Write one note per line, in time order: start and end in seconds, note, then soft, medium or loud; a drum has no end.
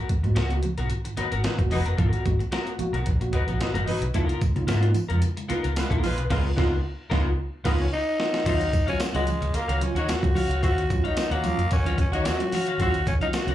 0.09 0.25 G#2 medium
0.09 0.25 D#3 medium
0.09 muted fingered electric bass stroke medium
0.09 kick loud
0.09 closed hi-hat medium
0.09 high conga medium
0.24 0.34 G#2 medium
0.24 0.38 A#3 medium
0.24 0.38 B3 medium
0.24 0.38 F#4 medium
0.24 muted clean electric guitar stroke medium
0.24 closed hi-hat soft
0.24 high conga medium
0.35 0.58 C#2 medium
0.35 0.55 B3 medium
0.35 0.55 F#4 medium
0.35 0.56 A#4 medium
0.35 snare loud
0.35 closed hi-hat medium
0.35 muted conga soft
0.50 0.65 A#3 medium
0.50 0.65 B3 medium
0.50 0.65 F#4 medium
0.50 closed hi-hat soft
0.63 muted clean electric guitar stroke soft
0.63 closed hi-hat medium
0.63 muted conga soft
0.63 high conga medium
0.63 low conga medium
0.78 0.88 B1 medium
0.78 0.92 G#2 medium
0.78 0.92 D#3 medium
0.78 0.89 B3 soft
0.78 0.89 F#4 medium
0.78 0.90 A#4 medium
0.78 closed hi-hat soft
0.90 0.97 B3 soft
0.90 0.97 F#4 soft
0.90 muted clean electric guitar stroke soft
0.90 closed hi-hat medium
0.90 muted conga soft
1.05 1.19 G#2 medium
1.05 1.19 D#3 medium
1.05 muted clean electric guitar stroke soft
1.05 closed hi-hat medium
1.17 1.27 F#3 medium
1.17 1.33 A#3 medium
1.17 1.31 B3 medium
1.17 1.33 B3 medium
1.17 1.27 D#4 medium
1.17 1.31 F#4 medium
1.17 1.33 F#4 medium
1.17 1.30 A#4 medium
1.17 1.26 B4 medium
1.17 muted fingered electric bass stroke soft
1.17 closed hi-hat medium
1.17 muted conga soft
1.31 1.42 G#1 medium
1.31 1.43 B3 soft
1.31 1.43 F#4 medium
1.31 1.43 A#4 medium
1.31 closed hi-hat medium
1.44 1.60 G#2 medium
1.44 1.60 D#3 medium
1.44 1.54 F#3 medium
1.44 1.54 D#4 medium
1.44 1.54 B4 medium
1.44 muted clean electric guitar stroke soft
1.44 snare loud
1.44 closed hi-hat medium
1.44 muted conga soft
1.58 1.71 F#1 medium
1.58 1.73 A#3 medium
1.58 1.71 B3 medium
1.58 1.71 F#4 medium
1.58 muted clean electric guitar stroke soft
1.58 kick medium
1.58 closed hi-hat medium
1.58 high conga medium
1.71 1.83 F1 medium
1.71 1.89 F#3 loud
1.71 1.86 B3 medium
1.71 1.77 B3 soft
1.71 1.89 D#4 medium
1.71 1.77 F#4 soft
1.71 1.85 F#4 medium
1.71 1.84 A#4 medium
1.71 1.89 B4 loud
1.71 open hi-hat medium
1.71 high conga medium
1.71 low conga medium
1.86 1.96 F#1 medium
1.86 1.96 B3 medium
1.86 1.97 F#4 medium
1.86 1.97 A#4 medium
1.86 closed hi-hat soft
1.98 2.10 G#1 loud
1.98 2.14 G#2 medium
1.98 2.14 D#3 medium
1.98 2.09 A#3 medium
1.98 2.09 F4 medium
1.98 2.24 A#4 medium
1.98 kick loud
1.98 closed hi-hat medium
1.98 low conga medium
2.09 2.23 B3 medium
2.09 2.23 F#4 medium
2.13 2.18 B3 soft
2.13 2.18 F#4 soft
2.13 closed hi-hat medium
2.26 2.37 G#1 medium
2.26 2.41 A#3 medium
2.26 2.41 B3 medium
2.26 2.41 F#4 medium
2.26 kick loud
2.26 closed hi-hat medium
2.26 high conga medium
2.39 muted clean electric guitar stroke medium
2.39 closed hi-hat soft
2.39 high conga medium
2.52 2.71 B3 medium
2.52 2.71 F#4 medium
2.52 2.72 A#4 medium
2.52 snare loud
2.52 closed hi-hat medium
2.52 muted conga soft
2.67 closed hi-hat medium
2.79 2.95 A#3 loud
2.79 2.95 B3 medium
2.79 2.95 F#4 loud
2.79 muted fingered electric bass stroke soft
2.79 muted clean electric guitar stroke soft
2.79 closed hi-hat medium
2.79 muted conga soft
2.79 high conga medium
2.79 low conga medium
2.93 3.03 B1 medium
2.93 3.05 B3 medium
2.93 3.05 F#4 medium
2.93 3.06 A#4 medium
2.93 closed hi-hat soft
3.06 3.28 A#1 medium
3.06 muted clean electric guitar stroke soft
3.06 kick medium
3.06 closed hi-hat medium
3.06 muted conga soft
3.21 3.35 A#3 medium
3.21 3.35 B3 medium
3.21 3.35 F#4 medium
3.21 muted clean electric guitar stroke soft
3.21 closed hi-hat medium
3.33 3.43 F#3 medium
3.33 3.48 B3 medium
3.33 3.42 D#4 medium
3.33 3.47 F#4 medium
3.33 3.47 A#4 medium
3.33 3.42 B4 medium
3.33 kick medium
3.33 closed hi-hat medium
3.33 muted conga soft
3.47 3.58 A#1 medium
3.47 3.62 G#2 medium
3.47 3.62 D#3 medium
3.47 3.59 B3 medium
3.47 3.60 F#4 medium
3.47 3.60 A#4 medium
3.47 closed hi-hat medium
3.60 3.69 F#3 medium
3.60 3.76 B3 medium
3.60 3.69 D#4 medium
3.60 3.76 F#4 medium
3.60 3.69 B4 medium
3.60 muted fingered electric bass stroke medium
3.60 muted clean electric guitar stroke soft
3.60 snare medium
3.60 closed hi-hat medium
3.74 3.85 F#1 medium
3.74 3.89 G#2 medium
3.74 3.89 D#3 medium
3.74 3.86 B3 medium
3.74 3.87 F#4 medium
3.74 3.87 A#4 medium
3.74 closed hi-hat medium
3.74 high conga medium
3.86 4.04 F#3 loud
3.86 4.03 B3 medium
3.86 4.04 D#4 medium
3.86 4.03 F#4 medium
3.86 4.04 B4 loud
3.86 muted clean electric guitar stroke soft
3.86 open hi-hat medium
3.86 muted conga soft
3.86 high conga medium
3.86 low conga medium
4.01 4.12 B1 medium
4.01 muted clean electric guitar stroke medium
4.01 closed hi-hat medium
4.14 4.26 C#2 loud
4.14 4.25 A#3 medium
4.14 4.30 A#3 medium
4.14 4.30 B3 medium
4.14 4.30 D#4 medium
4.14 4.40 F4 medium
4.14 4.30 F4 loud
4.14 4.40 A#4 loud
4.14 kick loud
4.14 closed hi-hat medium
4.14 tambourine soft
4.14 low conga medium
4.25 4.39 B3 medium
4.29 closed hi-hat medium
4.41 4.57 C#3 medium
4.41 4.57 G#3 medium
4.41 muted fingered electric bass stroke soft
4.41 kick loud
4.41 closed hi-hat medium
4.41 tambourine medium
4.41 muted conga soft
4.41 high conga medium
4.56 4.66 C#3 medium
4.56 4.70 A#3 medium
4.56 4.70 B3 medium
4.56 4.70 D#4 medium
4.56 4.70 F4 medium
4.56 muted clean electric guitar stroke soft
4.56 closed hi-hat soft
4.56 high conga medium
4.67 4.90 G#2 loud
4.67 4.88 B3 loud
4.67 4.89 F4 medium
4.67 4.89 A#4 medium
4.67 snare loud
4.67 closed hi-hat medium
4.67 tambourine loud
4.67 muted conga soft
4.83 4.97 A#3 medium
4.83 4.97 B3 medium
4.83 4.97 D#4 medium
4.83 4.97 F4 medium
4.83 closed hi-hat medium
4.95 muted clean electric guitar stroke soft
4.95 closed hi-hat medium
4.95 tambourine medium
4.95 muted conga soft
4.95 high conga medium
4.95 low conga medium
5.08 5.20 F2 medium
5.08 5.24 C#3 medium
5.08 5.24 G#3 medium
5.08 5.20 B3 soft
5.08 5.21 F4 medium
5.08 5.21 A#4 medium
5.08 closed hi-hat soft
5.21 5.28 D#4 soft
5.21 5.28 F4 soft
5.21 muted clean electric guitar stroke soft
5.21 closed hi-hat medium
5.21 tambourine medium
5.21 muted conga soft
5.37 5.51 C#3 medium
5.37 5.51 G#3 medium
5.37 muted clean electric guitar stroke soft
5.37 closed hi-hat medium
5.49 5.58 G#3 medium
5.49 5.65 A#3 medium
5.49 5.63 B3 medium
5.49 5.65 B3 medium
5.49 5.65 D#4 medium
5.49 5.58 F4 medium
5.49 5.63 F4 medium
5.49 5.65 F4 medium
5.49 5.62 A#4 medium
5.49 5.59 B4 medium
5.49 muted fingered electric bass stroke soft
5.49 closed hi-hat medium
5.49 tambourine soft
5.63 5.75 C#2 medium
5.63 5.75 B3 medium
5.63 5.75 F4 medium
5.63 5.75 A#4 medium
5.63 closed hi-hat medium
5.76 5.92 C#3 medium
5.76 5.86 G#3 medium
5.76 5.92 G#3 medium
5.76 5.86 F4 medium
5.76 5.86 B4 medium
5.76 muted clean electric guitar stroke soft
5.76 snare loud
5.76 closed hi-hat medium
5.76 tambourine loud
5.90 6.01 B1 medium
5.90 6.05 A#3 medium
5.90 6.05 B3 medium
5.90 6.02 B3 medium
5.90 6.02 D#4 medium
5.90 6.03 F4 medium
5.90 6.02 F4 medium
5.90 6.03 A#4 medium
5.90 kick medium
5.90 closed hi-hat medium
5.90 high conga medium
6.03 6.18 A#1 medium
6.03 6.21 G#3 loud
6.03 6.09 D#4 soft
6.03 6.21 F4 loud
6.03 6.09 F4 soft
6.03 6.21 B4 loud
6.03 muted clean electric guitar stroke soft
6.03 open hi-hat medium
6.03 tambourine medium
6.03 high conga medium
6.03 low conga medium
6.17 6.28 B1 medium
6.17 muted clean electric guitar stroke soft
6.17 closed hi-hat medium
6.30 6.49 C#2 loud
6.30 6.49 C#3 loud
6.30 6.49 G#3 medium
6.30 6.45 G#3 loud
6.30 6.49 B3 loud
6.30 6.44 F4 loud
6.30 6.49 F4 loud
6.30 6.50 A#4 loud
6.30 6.44 B4 loud
6.30 kick loud
6.30 snare loud
6.30 crash medium
6.56 6.76 C#2 loud
6.56 6.72 G#3 medium
6.56 6.76 A#3 loud
6.56 6.76 B3 loud
6.56 6.76 D#4 loud
6.56 6.76 F4 loud
6.56 6.71 F4 medium
6.56 6.76 F4 medium
6.56 6.77 A#4 loud
6.56 6.72 B4 medium
6.56 kick loud
6.56 snare loud
7.10 7.30 C#2 loud
7.10 7.25 G#3 loud
7.10 7.30 A#3 loud
7.10 7.30 B3 loud
7.10 7.30 D#4 loud
7.10 7.25 F4 loud
7.10 7.30 F4 loud
7.10 7.29 A#4 loud
7.10 7.25 B4 medium
7.10 kick loud
7.10 snare loud
7.64 7.84 C#2 loud
7.64 7.79 G#3 loud
7.64 7.84 A#3 loud
7.64 7.84 B3 medium
7.64 7.84 B3 loud
7.64 7.72 B3 medium
7.64 7.84 D#4 loud
7.64 7.79 F4 loud
7.64 7.84 F4 loud
7.64 7.85 A#4 loud
7.64 7.79 B4 loud
7.64 kick loud
7.64 snare loud
7.64 crash medium
7.80 7.92 C#4 medium
7.93 8.43 D#4 loud
8.20 snare loud
8.34 snare medium
8.46 8.68 D#2 loud
8.46 8.62 F#3 medium
8.46 8.62 C#4 medium
8.46 8.86 D#4 loud
8.46 8.62 F4 loud
8.46 8.67 F#4 medium
8.46 8.67 C#5 medium
8.46 8.67 F5 medium
8.46 kick loud
8.46 closed hi-hat medium
8.46 crash medium
8.46 tambourine soft
8.46 muted conga soft
8.61 closed hi-hat medium
8.72 8.89 D#3 medium
8.72 muted clean electric guitar stroke soft
8.72 kick loud
8.72 closed hi-hat medium
8.72 tambourine medium
8.72 muted conga soft
8.72 high conga medium
8.87 9.02 F#3 medium
8.87 9.02 C#4 medium
8.87 9.01 C#4 loud
8.87 9.02 F4 medium
8.87 8.98 F#4 medium
8.87 8.99 C#5 medium
8.87 9.00 F5 medium
8.87 muted fingered electric bass stroke soft
8.87 closed hi-hat soft
8.87 high conga medium
9.00 muted clean electric guitar stroke soft
9.00 snare loud
9.00 closed hi-hat medium
9.00 tambourine loud
9.14 9.25 C#2 medium
9.14 9.29 F#3 medium
9.14 9.57 G#3 loud
9.14 9.29 C#4 medium
9.14 9.29 F4 medium
9.14 9.26 F#4 medium
9.14 9.26 C#5 medium
9.14 9.27 F#5 medium
9.14 closed hi-hat medium
9.27 muted clean electric guitar stroke soft
9.27 closed hi-hat medium
9.27 tambourine medium
9.27 high conga medium
9.27 low conga medium
9.41 9.52 C#2 medium
9.41 9.56 D#3 medium
9.41 muted clean electric guitar stroke soft
9.41 closed hi-hat soft
9.54 9.64 F#3 medium
9.54 9.85 A#3 loud
9.54 9.60 C#4 soft
9.54 9.60 F4 soft
9.54 9.64 F4 medium
9.54 9.64 A#4 medium
9.54 muted clean electric guitar stroke soft
9.54 muted fingered electric bass stroke medium
9.54 closed hi-hat medium
9.54 tambourine medium
9.54 muted conga soft
9.68 9.79 C#2 medium
9.68 9.83 D#3 medium
9.68 9.80 F#4 medium
9.68 9.81 C#5 medium
9.68 9.81 F5 medium
9.68 closed hi-hat medium
9.81 9.96 F#3 medium
9.81 9.97 C#4 medium
9.81 9.99 C#4 medium
9.81 9.97 F4 medium
9.81 muted clean electric guitar stroke soft
9.81 closed hi-hat medium
9.95 10.06 D#2 medium
9.95 10.13 A#3 medium
9.95 10.13 D#4 loud
9.95 10.13 F#4 loud
9.95 10.13 C#5 loud
9.95 muted clean electric guitar stroke soft
9.95 closed hi-hat soft
10.08 10.24 D#3 medium
10.08 10.63 F#4 loud
10.08 muted fingered electric bass stroke medium
10.08 muted clean electric guitar stroke soft
10.08 snare loud
10.08 closed hi-hat medium
10.08 tambourine loud
10.22 10.33 C#2 medium
10.22 10.36 F#3 medium
10.22 10.34 C#4 medium
10.22 10.34 F4 medium
10.22 muted clean electric guitar stroke medium
10.22 kick medium
10.22 closed hi-hat medium
10.22 high conga medium
10.35 10.41 C#4 soft
10.35 10.41 F4 soft
10.35 10.49 F#4 medium
10.35 10.49 C#5 medium
10.35 10.48 F5 medium
10.35 open hi-hat medium
10.35 tambourine medium
10.35 muted conga soft
10.35 high conga medium
10.35 low conga medium
10.49 10.60 C#2 medium
10.49 10.61 F#4 soft
10.49 10.62 C#5 medium
10.49 10.63 F5 medium
10.49 closed hi-hat soft
10.62 10.84 D#2 loud
10.62 10.78 D#3 medium
10.62 10.83 F#4 medium
10.62 11.07 F#4 loud
10.62 10.83 C#5 medium
10.62 10.84 F5 loud
10.62 kick loud
10.62 closed hi-hat medium
10.62 tambourine soft
10.62 muted conga soft
10.77 10.82 C#4 soft
10.77 10.82 F4 soft
10.77 closed hi-hat medium
10.89 11.05 F#3 medium
10.89 11.05 C#4 medium
10.89 11.05 F4 medium
10.89 muted clean electric guitar stroke soft
10.89 kick loud
10.89 closed hi-hat medium
10.89 tambourine medium
10.89 muted conga soft
10.89 high conga medium
11.04 11.33 D#4 loud
11.04 11.16 F#4 medium
11.04 11.16 C#5 medium
11.04 11.17 F5 medium
11.04 muted fingered electric bass stroke soft
11.04 closed hi-hat soft
11.04 high conga medium
11.17 muted clean electric guitar stroke soft
11.17 snare loud
11.17 closed hi-hat medium
11.17 tambourine loud
11.31 11.41 D#2 medium
11.31 11.74 A#3 loud
11.31 11.43 F#4 medium
11.31 11.44 C#5 medium
11.31 11.45 F#5 medium
11.31 closed hi-hat medium
11.43 11.59 F#3 loud
11.43 11.59 C#4 medium
11.43 11.59 F4 loud
11.43 muted clean electric guitar stroke soft
11.43 closed hi-hat medium
11.43 tambourine medium
11.43 muted conga soft
11.43 high conga medium
11.43 low conga medium
11.58 11.68 F#2 medium
11.58 muted clean electric guitar stroke soft
11.58 closed hi-hat soft
11.71 11.80 A#3 medium
11.71 11.99 C#4 loud
11.71 11.80 F#4 medium
11.71 11.80 C#5 medium
11.71 muted fingered electric bass stroke soft
11.71 muted clean electric guitar stroke soft
11.71 kick loud
11.71 closed hi-hat medium
11.71 tambourine medium
11.85 11.96 D#2 medium
11.85 11.99 F#3 medium
11.85 12.00 C#4 medium
11.85 12.00 F4 medium
11.85 11.98 F#4 medium
11.85 11.98 C#5 medium
11.85 11.98 F5 medium
11.85 closed hi-hat medium
11.98 12.13 C#4 medium
11.98 muted clean electric guitar stroke soft
11.98 kick medium
11.98 closed hi-hat medium
11.98 tambourine soft
11.98 muted conga soft
12.12 12.22 D#2 medium
12.12 12.27 D#3 medium
12.12 12.36 A#3 loud
12.12 12.29 D#4 loud
12.12 12.36 F#4 loud
12.12 12.35 C#5 loud
12.12 muted clean electric guitar stroke soft
12.12 closed hi-hat medium
12.25 12.81 F#4 loud
12.25 muted clean electric guitar stroke soft
12.25 snare loud
12.25 closed hi-hat medium
12.25 tambourine loud
12.25 muted conga soft
12.39 12.53 F#3 medium
12.39 12.53 C#4 medium
12.39 12.54 F4 medium
12.39 muted clean electric guitar stroke soft
12.39 closed hi-hat medium
12.39 high conga medium
12.52 12.68 F#4 medium
12.52 12.67 C#5 medium
12.52 12.67 F5 medium
12.52 open hi-hat medium
12.52 tambourine medium
12.52 muted conga soft
12.52 high conga medium
12.52 low conga medium
12.67 12.81 D#3 medium
12.67 12.79 F#4 medium
12.67 12.80 C#5 medium
12.67 12.81 F5 medium
12.67 closed hi-hat soft
12.79 13.01 D#2 loud
12.79 12.95 F#3 loud
12.79 12.95 C#4 medium
12.79 12.95 F4 loud
12.79 13.00 F#4 medium
12.79 13.06 F#4 loud
12.79 13.01 C#5 medium
12.79 13.01 F5 loud
12.79 kick loud
12.79 closed hi-hat medium
12.94 closed hi-hat medium
13.06 13.22 D#3 medium
13.06 13.14 C#4 loud
13.06 muted clean electric guitar stroke medium
13.06 kick loud
13.06 closed hi-hat medium
13.06 tambourine medium
13.06 muted conga soft
13.06 high conga medium
13.21 13.35 F#3 medium
13.21 13.35 C#4 medium
13.21 13.28 D#4 loud
13.21 13.35 F4 medium
13.21 13.33 F#4 medium
13.21 13.33 C#5 medium
13.21 13.34 F5 medium
13.21 muted fingered electric bass stroke medium
13.21 closed hi-hat soft
13.21 high conga medium
13.33 13.55 F#4 loud
13.33 muted clean electric guitar stroke soft
13.33 snare loud
13.33 closed hi-hat medium
13.33 tambourine loud
13.33 muted conga soft
13.47 13.55 C#2 medium
13.47 13.55 F#3 medium
13.47 13.55 C#4 medium
13.47 13.55 F4 medium
13.47 13.55 F#4 medium
13.47 13.55 C#5 medium
13.47 13.55 F#5 medium
13.47 closed hi-hat soft